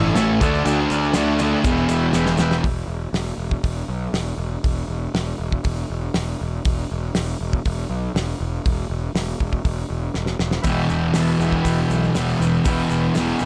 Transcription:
Already playing: picked electric bass G1, distorted electric guitar A2 E3 A3
0.14 picked electric bass A1, distorted electric guitar A2 E3 A3, transistor combo organ A4 C#5 E5, snare, ride, shaker
0.41 picked electric bass D2, distorted electric guitar D3 A3 D4, transistor combo organ A4 D5 F#5, kick, ride, shaker
0.55 shaker
0.65 picked electric bass D2, distorted electric guitar D3 A3 D4, ride, shaker
0.90 picked electric bass D2, transistor combo organ A4 D5, ride, shaker
0.94 transistor combo organ F#5
1.03 shaker
1.14 picked electric bass D2, distorted electric guitar D3 A3 D4, snare, ride, shaker
1.18 transistor combo organ A4 D5 F#5
1.39 distorted electric guitar D3 A3 D4, ride, shaker
1.44 transistor combo organ A4 D5 F#5
1.63 picked electric bass E1, distorted electric guitar E2 B2 E3, kick, ride, shaker
1.71 transistor combo organ B4 E5 G5
1.77 shaker
1.89 picked electric bass E1, transistor combo organ B4 E5, ride, shaker
1.95 transistor combo organ G5
2.13 picked electric bass E1, distorted electric guitar E2 B2 E3, transistor combo organ B4 E5, snare, shaker
2.17 transistor combo organ G5
2.26 snare, shaker
2.37 picked electric bass E1, distorted electric guitar E2 B2 E3, transistor combo organ B4 G5, snare, shaker
2.41 transistor combo organ E5
2.51 snare, shaker
2.64 picked electric bass E1, kick, open hi-hat
2.87 picked electric bass E1
3.13 picked electric bass E1, snare, open hi-hat
3.38 picked electric bass E1
3.51 kick
3.63 picked electric bass E1, kick, open hi-hat
3.88 picked electric bass B1
4.13 picked electric bass E1, snare, open hi-hat
4.37 picked electric bass E1
4.64 picked electric bass E1, kick, open hi-hat
4.88 picked electric bass E1
5.14 picked electric bass E1, snare, open hi-hat
5.39 picked electric bass E1
5.52 kick
5.64 picked electric bass E1, kick, open hi-hat
5.90 picked electric bass E1
6.14 picked electric bass E1, snare, open hi-hat
6.41 picked electric bass E1
6.65 picked electric bass E1, kick, open hi-hat
6.91 picked electric bass E1
7.15 picked electric bass E1, snare, open hi-hat
7.41 picked electric bass E1
7.53 kick
7.65 picked electric bass E1, kick, open hi-hat
7.89 picked electric bass B1
8.14 picked electric bass E1, snare, open hi-hat
8.40 picked electric bass E1
8.66 picked electric bass E1, kick, open hi-hat
8.89 picked electric bass E1
9.14 picked electric bass E1, snare, open hi-hat
9.40 picked electric bass E1, kick
9.53 kick
9.64 picked electric bass E1, kick, open hi-hat
9.90 picked electric bass E1
10.14 picked electric bass E1, snare
10.26 snare
10.39 picked electric bass E1, snare
10.51 snare
10.62 picked electric bass E1, distorted electric guitar E2, transistor combo organ B4 E5 G5, kick, open hi-hat, splash, shaker
10.67 distorted electric guitar B2 E3
10.88 picked electric bass E1, transistor combo organ B4 E5 G5, shaker
11.13 picked electric bass E1, distorted electric guitar E2 B2, transistor combo organ B4 E5 A5, snare, open hi-hat, shaker
11.18 distorted electric guitar E3
11.27 shaker
11.38 picked electric bass E1, distorted electric guitar E3, transistor combo organ B4 E5 G5, shaker
11.45 distorted electric guitar B2
11.53 kick, shaker
11.62 picked electric bass E1, transistor combo organ B4 E5 G5, kick, open hi-hat, shaker
11.87 picked electric bass B1, transistor combo organ B4 E5 G5, shaker
12.04 shaker
12.15 picked electric bass E1, distorted electric guitar E2 B2, transistor combo organ B4 E5 G5, snare, open hi-hat, shaker
12.20 distorted electric guitar E3
12.29 shaker
12.38 picked electric bass E1, distorted electric guitar E3, transistor combo organ B4 E5 G5, shaker
12.46 distorted electric guitar B2
12.54 shaker
12.65 picked electric bass E1, distorted electric guitar E2 B2, transistor combo organ B4 E5 G5, kick, open hi-hat, shaker
12.70 distorted electric guitar E3
12.90 picked electric bass E1, transistor combo organ B4 E5 G5, shaker
13.15 picked electric bass E1, distorted electric guitar E2 B2, transistor combo organ B4 E5 G5, snare, open hi-hat, shaker
13.21 distorted electric guitar E3
13.28 shaker
13.39 picked electric bass E1, distorted electric guitar E3, transistor combo organ B4 E5 G5, shaker

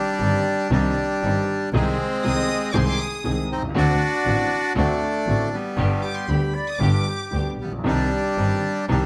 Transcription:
Already playing: bandoneon G3 D4
0.18 grand piano G1 G2 D#3 C4 D4 G4, double bass G1, string section C4 D4 D#4
0.70 grand piano C2 C3 D#3 C4 D4 G4, double bass C2, bandoneon G3 D4, string section C4 D4 D#4
1.22 grand piano G1 G2 D#3 C4 D4 G4, double bass G1, string section C4 D4 D#4
1.72 double bass C2, grand piano C2 C3 D#3 G#3 C4 G#4, bandoneon G#3 C4, string section C4 D#4 G#4
2.23 double bass C2, grand piano C2 C3 D#3 G#3 C4 G#4, string section C4 D#4 G#4, flute G#4, violin section D#6
2.36 flute D#5
2.72 double bass C2, grand piano C2 C3 D#3 G#3 C4 G#4, string section C4 D#4 G#4, flute C5, violin section C6 D6
2.86 flute G#4, violin section D6
3.00 violin section D#6
3.24 double bass C2, grand piano C2 C3 D#3 G#3 C4 G#4, string section C4 D#4 G#4
3.50 double bass C2, bandoneon C4 D#4
3.56 grand piano B1
3.62 grand piano C2
3.69 grand piano C#2
3.74 grand piano D2 D3 A3 C4 F#4, double bass D2, string section C4 D4 F#4, bandoneon D4 F#4
4.25 double bass A1, grand piano A1 A2 D3 A3 C4 F#4, string section C4 D4 F#4
4.75 double bass D2, grand piano D2 D3 A3 C4 F#4, bandoneon A3 D4, string section C4 D4 F#4
5.26 grand piano A1 A2 D3 A3 C4 F#4, double bass A1, string section C4 D4 F#4
5.54 bandoneon G3 B3
5.76 grand piano G1 G2 D3 G3 B3 G4, double bass G1, string section B3 D4 G4
6.02 flute G4, violin section D6
6.16 violin section C6
6.28 double bass D2, grand piano D2 D3 G3 B3 G4, string section B3 D4 G4, violin section B5
6.54 flute D5
6.68 violin section D#6
6.79 double bass G1, grand piano G1 G2 D3 G3 B3 G4, string section B3 D4 G4, flute B4, violin section D6
7.08 flute G4
7.31 grand piano D2 D3 G3 B3 G4, double bass D2, string section B3 D4 G4
7.58 double bass A#1, bandoneon G3 B3
7.65 grand piano A1
7.72 grand piano A#1
7.78 grand piano B1
7.83 grand piano C2 C3 D#3 C4 D4 G4, double bass C2, string section C4 D4 D#4
7.87 bandoneon G3 D4
8.36 grand piano G1 G2 D#3 C4 D4 G4, double bass G1, string section C4 D4 D#4
8.88 grand piano C2 C3 D#3 C4 D4 G4, double bass C2, bandoneon G3 D4, string section C4 D4 D#4

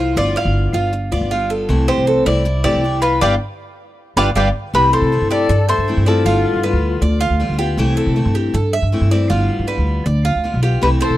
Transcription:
Already playing: upright bass C2, steel-string acoustic guitar E3 A3 C4 E4
0.00 cuban tres F4
0.16 upright bass G1, steel-string acoustic guitar G3 B3 F4, cuban tres F4 D5
0.36 cuban tres D5 F5
0.45 upright bass G1
0.73 upright bass G1, steel-string acoustic guitar B3 F4, cuban tres F4
0.93 muted steel-string acoustic guitar stroke
1.12 upright bass D2, steel-string acoustic guitar B3 F4, cuban tres D5
1.21 upright bass G1
1.31 steel-string acoustic guitar G3 B3 F4, cuban tres F4
1.50 cuban tres A4
1.69 upright bass C2, steel-string acoustic guitar C3 E3 A3 C4 E4
1.88 cuban tres G4 C5
1.98 upright bass C2
2.07 cuban tres A4
2.26 upright bass C2, steel-string acoustic guitar E3 A3 C4 E4, cuban tres E4 D5
2.45 muted steel-string acoustic guitar stroke
2.64 upright bass G2, steel-string acoustic guitar E3 A3 C4 E4, cuban tres G4 D5
2.74 upright bass C2
2.84 steel-string acoustic guitar E3 A3 C4 E4
3.02 cuban tres F4 B4
3.21 upright bass G1, steel-string acoustic guitar G3 B3 D4, cuban tres F4 G4 B4 D5 F5 G5
4.16 upright bass G1, steel-string acoustic guitar G3 B3 D4, cuban tres F4 G4 B4 D5 F5 G5
4.35 upright bass G1, steel-string acoustic guitar G3 B3 D4, cuban tres F4 G4 B4 D5 F5 G5
4.73 upright bass C2, steel-string acoustic guitar C3 E3 A3 C4 E4, flute G4, cuban tres B4
4.93 flute A4, cuban tres A4 C5
5.02 upright bass C3
5.12 steel-string acoustic guitar E3 A3 C4 E4
5.21 upright bass G2
5.30 cuban tres G4 D5, flute A4
5.49 upright bass G2, cuban tres A4, muted steel-string acoustic guitar stroke
5.68 flute A4, cuban tres C5 E5
5.78 upright bass G2
5.88 steel-string acoustic guitar E3 A3 C4 E4
5.97 upright bass G2
6.06 steel-string acoustic guitar E3 A3 C4 E4, flute F4, cuban tres A4 D5
6.25 upright bass G1, steel-string acoustic guitar G3 B3 F4, cuban tres F4
6.54 upright bass G2
6.63 steel-string acoustic guitar G3 B3 F4, cuban tres B4
6.73 upright bass D2
7.01 upright bass D2, cuban tres D5, muted steel-string acoustic guitar stroke
7.21 cuban tres F4
7.30 upright bass D2
7.40 steel-string acoustic guitar G3 B3 F4
7.49 upright bass D2
7.58 steel-string acoustic guitar B3 F4, cuban tres G4
7.77 upright bass C2, steel-string acoustic guitar C3 E3 A3 C4 E4
7.97 cuban tres A4
8.06 upright bass C3
8.16 steel-string acoustic guitar E3 A3 C4 E4
8.25 upright bass G2
8.35 cuban tres G4
8.54 upright bass G2, cuban tres A4, muted steel-string acoustic guitar stroke
8.73 cuban tres E5
8.82 upright bass G2
8.92 steel-string acoustic guitar E3 A3 C4 E4
9.01 upright bass G2
9.11 steel-string acoustic guitar E3 A3 C4 E4, cuban tres D5
9.30 upright bass G1, steel-string acoustic guitar G3 B3 F4, cuban tres F4
9.59 upright bass G2
9.67 steel-string acoustic guitar G3 B3 F4, cuban tres B4
9.78 upright bass D2
10.06 upright bass D2, cuban tres D5, muted steel-string acoustic guitar stroke
10.25 cuban tres F4
10.35 upright bass D2
10.44 steel-string acoustic guitar G3 B3 F4
10.54 upright bass B1
10.63 steel-string acoustic guitar B3 F4, cuban tres G4
10.81 upright bass C2, steel-string acoustic guitar C3 E3 A3 C4 E4, flute G4, cuban tres B4
11.01 cuban tres A4 C5, flute A4
11.10 upright bass C3

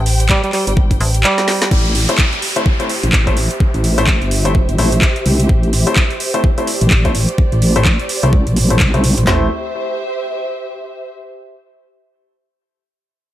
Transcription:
Already playing: fm bass A1, string section G4 C5 G5
0.06 open hi-hat
0.20 closed hi-hat
0.29 alto saxophone G3, kick, clap
0.44 alto saxophone G3, closed hi-hat
0.53 alto saxophone G3, clap, open hi-hat
0.67 wobble bass G1, alto saxophone G3, closed hi-hat
0.77 kick
0.91 kick, closed hi-hat
1.00 fm bass A1, open hi-hat
1.14 closed hi-hat
1.24 alto saxophone G3, clap
1.38 snare, closed hi-hat
1.48 snare, open hi-hat
1.62 snare, closed hi-hat
1.71 wobble bass A1, string section G4, kick, crash, downlifter
1.85 closed hi-hat
1.95 open hi-hat
2.09 grand piano A3 C4 E4 C5, closed hi-hat
2.18 kick, clap
2.33 closed hi-hat
2.42 open hi-hat
2.54 grand piano A3 C4 E4 C5, string section C5, closed hi-hat
2.66 kick
2.80 grand piano A3 C4 E4 C5, closed hi-hat
2.89 open hi-hat
3.03 wobble bass A1, closed hi-hat
3.13 wobble bass A1, kick, clap
3.26 grand piano A3 C4 E4 C5, string section E5, kick, closed hi-hat
3.37 open hi-hat
3.51 closed hi-hat
3.60 kick
3.74 wobble bass A1, closed hi-hat
3.84 open hi-hat
3.98 grand piano A3 C4 E4 C5, closed hi-hat
4.07 kick, clap
4.22 wobble bass G1, closed hi-hat
4.31 open hi-hat
4.45 grand piano A3 C4 E4 C5, closed hi-hat
4.55 kick
4.69 wobble bass G1, closed hi-hat
4.78 wobble bass A1, grand piano A3 C4 E4 C5, open hi-hat
4.92 closed hi-hat
5.02 kick, clap
5.16 closed hi-hat
5.26 wobble bass C2, open hi-hat
5.40 closed hi-hat
5.49 wobble bass A1, kick
5.63 closed hi-hat
5.73 open hi-hat
5.87 grand piano A3 C4 E4 C5, closed hi-hat
5.96 kick, clap
6.10 closed hi-hat
6.20 open hi-hat
6.34 grand piano A3 C4 E4 C5, closed hi-hat
6.44 kick
6.57 grand piano A3 C4 E4 C5, string section D5, closed hi-hat
6.67 open hi-hat
6.81 wobble bass A1, closed hi-hat
6.90 wobble bass A1, kick, clap
7.05 grand piano A3 C4 E4 C5, kick, closed hi-hat
7.15 open hi-hat
7.29 closed hi-hat
7.38 kick
7.52 wobble bass A1, closed hi-hat
7.62 open hi-hat
7.76 grand piano A3 C4 E4 C5, closed hi-hat
7.85 kick, clap
7.99 closed hi-hat
8.09 open hi-hat
8.23 wobble bass C2, grand piano A3 C4 E4 C5, closed hi-hat
8.33 kick
8.47 wobble bass A1, closed hi-hat
8.56 open hi-hat
8.70 grand piano A3 C4 E4 C5, closed hi-hat
8.79 wobble bass B1, kick, clap
8.94 grand piano A3 C4 E4 C5, closed hi-hat
9.04 open hi-hat
9.18 wobble bass A1, closed hi-hat
9.27 wobble bass A1, grand piano A3 C4 E4 C5, string section G4, snare, clap, floor tom
9.36 string section C5
9.43 string section E5

